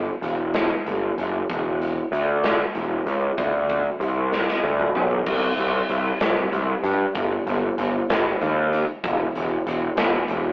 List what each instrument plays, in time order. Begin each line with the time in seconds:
0.22 picked electric bass E1, closed hi-hat
0.54 snare, closed hi-hat
0.86 picked electric bass G1, closed hi-hat
1.18 picked electric bass F#1, closed hi-hat
1.50 picked electric bass E1, kick, closed hi-hat
1.82 closed hi-hat
2.12 picked electric bass D2, closed hi-hat
2.44 snare, closed hi-hat
2.75 picked electric bass E1, closed hi-hat
3.06 picked electric bass C#2, closed hi-hat
3.38 picked electric bass D2, kick, closed hi-hat
3.69 kick, closed hi-hat
4.00 picked electric bass C2, closed hi-hat
4.32 snare
4.48 snare
4.63 picked electric bass D2
4.79 mid tom
4.95 picked electric bass B1, mid tom
5.11 floor tom
5.26 picked electric bass C2, kick, crash
5.58 picked electric bass C2, closed hi-hat
5.89 picked electric bass C2, closed hi-hat
6.20 picked electric bass C2, snare, closed hi-hat
6.52 picked electric bass C2, closed hi-hat
6.83 picked electric bass G2, closed hi-hat
7.15 picked electric bass G1, kick, closed hi-hat
7.46 picked electric bass G1, closed hi-hat
7.78 picked electric bass G1, closed hi-hat
8.10 picked electric bass G1, snare, closed hi-hat
8.41 picked electric bass D#2, closed hi-hat
8.73 closed hi-hat
9.04 picked electric bass E1, kick, closed hi-hat
9.35 picked electric bass E1, closed hi-hat
9.67 picked electric bass E1, closed hi-hat
9.97 picked electric bass E1, snare, closed hi-hat
10.28 picked electric bass E1, closed hi-hat